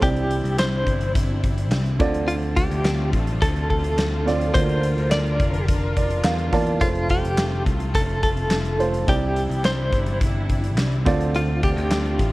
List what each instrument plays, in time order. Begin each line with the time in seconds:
Already playing: string section C4
0.01 picked electric bass C2, upright piano C3 C4 E4 D5, string section C3 D4 E4, clean electric guitar G4, kick, closed hi-hat
0.16 closed hi-hat
0.31 closed hi-hat
0.44 picked electric bass C2, closed hi-hat
0.59 clean electric guitar C5, snare, clap
0.86 picked electric bass G1, kick, closed hi-hat
1.01 closed hi-hat
1.15 kick, closed hi-hat
1.43 kick, closed hi-hat
1.58 closed hi-hat
1.71 picked electric bass C2, snare, clap
1.86 closed hi-hat
1.99 picked electric bass D2, upright piano D3 C4 F4 D5, string section D3 A3 C4 F4, kick, closed hi-hat
2.15 closed hi-hat
2.28 clean electric guitar F4, closed hi-hat
2.43 closed hi-hat
2.57 clean electric guitar G4, kick, closed hi-hat
2.71 picked electric bass D2, closed hi-hat
2.85 snare, clap
3.13 picked electric bass A1, kick, closed hi-hat
3.27 closed hi-hat
3.42 picked electric bass D2, clean electric guitar A4, kick, closed hi-hat
3.56 closed hi-hat
3.70 clean electric guitar A4, kick, closed hi-hat
3.84 closed hi-hat
3.99 snare, clap
4.26 upright piano C4 F4 D5, snare, closed hi-hat
4.41 closed hi-hat
4.54 picked electric bass D2, string section D3 D4 A#4, upright piano D3 A#3 F4 D5, clean electric guitar C5, kick, closed hi-hat
4.69 closed hi-hat
4.83 closed hi-hat
4.97 picked electric bass D2, closed hi-hat
5.12 clean electric guitar D5, snare, clap
5.26 closed hi-hat
5.40 picked electric bass F1, kick, closed hi-hat
5.54 closed hi-hat
5.69 kick, closed hi-hat
5.97 upright piano D5, kick, closed hi-hat
6.11 closed hi-hat
6.25 picked electric bass E2, upright piano F5, snare, clap
6.39 closed hi-hat
6.53 picked electric bass E2, upright piano A#3 F4 D5 A5, kick, snare, open hi-hat
6.67 closed hi-hat
6.81 picked electric bass F1, upright piano A3 F4 C5, string section A3 C4, clean electric guitar F4, kick, closed hi-hat
6.95 closed hi-hat
7.09 clean electric guitar G4, kick, closed hi-hat
7.24 picked electric bass F1, closed hi-hat
7.38 snare, clap
7.66 picked electric bass C2, kick, closed hi-hat
7.80 closed hi-hat
7.95 picked electric bass F1, clean electric guitar A4, kick, closed hi-hat
8.09 closed hi-hat
8.23 clean electric guitar A4, kick, closed hi-hat
8.37 closed hi-hat
8.51 snare, clap
8.65 closed hi-hat
8.79 upright piano A3 F4 C5, closed hi-hat
8.94 closed hi-hat
9.07 picked electric bass C2, upright piano C3 C4 E4 D5, string section C3 G3 D4 E4, clean electric guitar G4, kick, closed hi-hat
9.36 closed hi-hat
9.50 picked electric bass C2, closed hi-hat
9.65 clean electric guitar C5, snare, clap
9.92 picked electric bass G1, kick, closed hi-hat
10.07 closed hi-hat
10.21 kick, closed hi-hat
10.50 kick, closed hi-hat
10.64 closed hi-hat
10.77 picked electric bass C2, snare, clap
10.92 closed hi-hat
11.05 picked electric bass D2, string section D3 A3 C4 F4, upright piano D3 C4 F4 D5, kick, snare, closed hi-hat
11.21 closed hi-hat
11.35 clean electric guitar F4, closed hi-hat
11.63 clean electric guitar G4, kick, closed hi-hat
11.77 picked electric bass D2, closed hi-hat
11.91 snare, clap
12.06 closed hi-hat
12.19 picked electric bass A1, kick, closed hi-hat